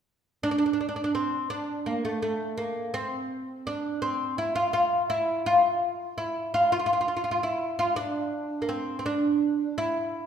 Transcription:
0.43 D4
0.51 D4
0.58 D4
0.66 D4
0.73 D4
0.81 D4
0.89 D4
0.96 D4
1.04 D4
1.15 C4
1.50 D4
1.86 A#3
2.05 A3
2.22 A3
2.58 A#3
2.94 C4
3.67 D4
4.02 C4
4.38 E4
4.55 F4
4.73 F4
5.10 E4
5.46 F4
6.18 E4
6.54 F4
6.72 F4
6.79 F4
6.86 F4
6.93 F4
7.01 F4
7.08 F4
7.17 F4
7.24 F4
7.31 F4
7.43 E4
7.79 F4
7.96 D4
8.62 A#3
8.69 C4
8.99 C4
9.06 D4
9.78 E4

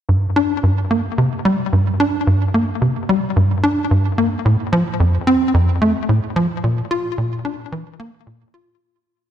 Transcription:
0.09 G2
0.36 D4
0.63 G2
0.91 A#3
1.18 C3
1.45 G3
1.73 G2
2.00 D4
2.27 G2
2.54 A#3
2.82 C3
3.09 G3
3.36 G2
3.63 D4
3.91 G2
4.18 A#3
4.45 A2
4.72 F3
5.00 F2
5.27 C4
5.54 F2
5.82 A3
6.09 A2
6.36 F3
6.64 A#2
6.91 F4
7.18 A#2
7.45 D4
7.72 E3
8.00 A#3
8.27 A#2
8.54 F4

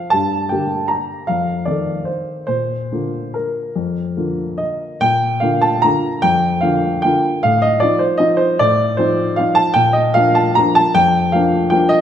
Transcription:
Already playing: F5
0.10 G2 A5
0.49 D3 A#3 G4 G5
0.88 A#5
1.27 F2 F5
1.65 D#3 C4 A4 D5
2.05 C5
2.47 A#2 C5
2.92 D3 A#3 F4
3.34 A#4
3.76 F2
4.17 D3 A#3 F4
4.58 D#5
5.01 A#2 G5
5.40 D3 A#3 F4 F5
5.62 A5
5.82 D3 A#3 F4 A#5
6.22 F2 G5
6.61 D3 A#3 F4 F5
7.02 D3 A#3 F4 G5
7.43 A2 F5
7.62 D#5
7.80 F3 C4 D#4 D5
7.99 C5
8.18 F3 C4 D#4 D#5
8.37 C5
8.59 A2 D5
8.97 F3 C4 D#4 C5
9.36 F3 C4 D#4 F5
9.55 A5
9.74 A#2 G5
9.93 D#5
10.14 F3 A#3 D4 F5
10.35 A5
10.55 F3 A#3 D4 A#5
10.75 A5
10.95 F2 G5
11.32 F3 A#3 D4 F5
11.70 F3 A#3 D4 G5
11.89 D#5

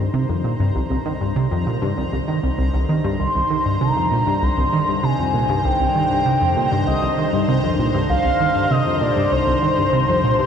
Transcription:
Already playing: C2 G2 D3 D#3 C5 A#5
0.14 C3
0.29 F2
0.44 A#2
0.60 G2
0.75 C2
0.90 C2
1.06 D#3
1.21 G2
1.36 C3
1.51 F2
1.67 A#2
1.82 G2
1.97 C2
2.12 C2
2.28 D#3
2.43 C2
2.58 C2
2.74 C2
2.89 D#3
3.04 G2
3.20 C2 C5 C6
3.35 C2
3.50 D#3
3.66 G2
3.81 C3 A#5
3.96 F2
4.12 A#2
4.27 G2
4.42 C2 C6
4.58 C2
4.73 D#3
4.88 G2
5.03 C3 G#5
5.19 F2
5.34 A#2
5.49 G2
5.65 C2 G5
5.80 C2
5.95 D#3
6.11 G2
6.26 C3
6.41 F2
6.57 A#2
6.72 G2
6.87 C2 D#5
7.02 C2
7.18 D#3
7.33 G2
7.48 C3
7.64 F2
7.79 A#2
7.94 G2
8.09 C2 F5
8.25 C2
8.40 D#3
8.55 G2
8.71 C3 D#5
8.86 F2
9.01 A#2 D5
9.17 G2
9.32 C2 C5
9.47 C2
9.63 D#3
9.78 G2
9.93 C3
10.08 F2
10.24 A#2
10.39 G2

